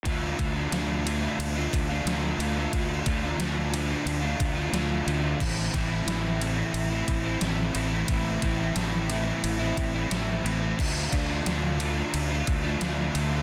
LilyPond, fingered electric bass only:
\new Staff \with { instrumentName = "Fingered electric bass" } { \clef bass \time 4/4 \key d \minor \tempo 4 = 89 d,8 d,8 d,4 d,8 d,8 d,8 d,8 | d,8 d,8 d,4 d,8 d,8 d,8 d,8 | a,,8 a,,8 a,,4 a,,8 a,,8 a,,8 a,,8 | a,,8 a,,8 a,,4 a,,8 a,,8 a,,8 a,,8 |
d,8 d,8 d,4 d,8 d,8 d,8 d,8 | }